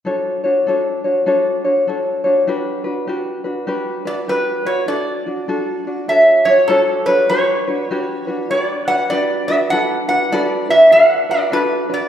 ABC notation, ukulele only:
X:1
M:4/4
L:1/8
Q:"Swing" 1/4=99
K:D
V:1 name="Ukulele"
[DFAc] [DFc] [DFAc] [DFc] [DFAc] [DFc] [DFAc] [DFc] | [DFGB] [DFB] [DFGB] [DFB] [DFGB] [DFB] [DFGB] [DFB] | [DFA] [DF] [DFA] [DF] [DFAc] [DFc] [DFAc] [DFc] | [DFGB] [DFB] [DFGB] [DFB] [DFGB] [DFB] [DFGB] [DFB] |
[DFAB] [DFB] [DFAB] [DFB] [DFAB] [DFB] [DFAB] [DFB] |]